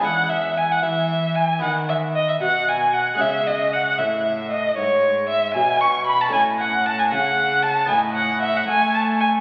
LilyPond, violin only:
\new Staff \with { instrumentName = "Violin" } { \time 12/8 \key e \major \tempo 4. = 76 fis''8 e''8 gis''16 fis''16 e''4 gis''8 fis''8 e''8 dis''16 e''16 fis''8 gis''8 fis''8 | e''8 dis''8 fis''8 e''4 dis''8 cis''4 e''8 gis''8 cis'''8 b''16 a''16 | gis''8 fis''8 a''16 gis''16 fis''4 a''8 gis''8 fis''8 e''16 fis''16 gis''8 a''8 gis''8 | }